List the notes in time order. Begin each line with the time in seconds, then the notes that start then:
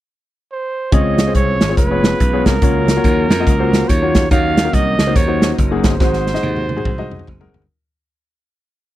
0.52 C5
0.91 C#2 C#3 G#3 C4 C#4 F4 G#4 C#5 D#5, kick, closed hi-hat
1.18 snare, closed hi-hat
1.27 C4 F4 G#4 C5
1.35 C2 C#5, kick, closed hi-hat
1.61 G#1, snare, closed hi-hat
1.69 C4 F4 G#4 C#5
1.77 F1 G#3 C#4 F4 B4, kick, closed hi-hat
1.91 B3 F4 G#4 C#5
2.04 snare, closed hi-hat
2.20 B1, kick, closed hi-hat
2.33 B3 F4 G#4 C#5
2.46 C2 A#4, kick, snare, closed hi-hat
2.62 C#2 C#3 F#3 A#3 C#4 F4 F#4 A#4 C#5, kick, closed hi-hat
2.88 snare, closed hi-hat
2.97 A#3 F4 F#4 C#5
3.04 D#2, kick, closed hi-hat
3.31 F2, snare, closed hi-hat
3.39 A#3 F4 F#4 D#5
3.46 C#2, kick, closed hi-hat
3.59 A#3 F4 F#4 C5
3.73 snare, closed hi-hat
3.88 D#2 C#5, kick, closed hi-hat
4.02 A#3 F4 F#4 C#5
4.15 kick, snare, closed hi-hat
4.31 D#2 D#3 F#3 A#3 C#4 D#4 F#4 A#4 C#5 F5, kick, closed hi-hat
4.57 snare, closed hi-hat
4.64 A#3 D#4 F#4 A#4
4.73 C2 D#5, kick, closed hi-hat
4.99 C#2, snare, closed hi-hat
5.07 A#3 D#4 F#4 C5
5.16 D#2 C#5, kick, closed hi-hat
5.28 A#3 D#4 F#4 C5
5.42 snare, closed hi-hat
5.58 F#1, kick, closed hi-hat
5.71 A#3 D#4 F#4 G#4
5.84 G1 C5, kick, snare, closed hi-hat
6.00 G#1 G#2 F#3 G#3 C4 D#4 F#4 G#4 C5, kick, snare
6.14 snare
6.27 snare
6.34 G#3 D#4 F#4 D#5, snare
6.43 D#2, high tom
6.56 high tom
6.69 high tom
6.76 G#3 D#4 F#4 G#4, mid tom
6.85 C2, kick, mid tom
6.98 G#3 D#4 F#4 D#5, mid tom
7.11 mid tom
7.19 mid tom
7.27 F#1, kick, mid tom
7.40 G#3 D#4 F#4 A#4, floor tom
7.54 G1, floor tom
7.62 floor tom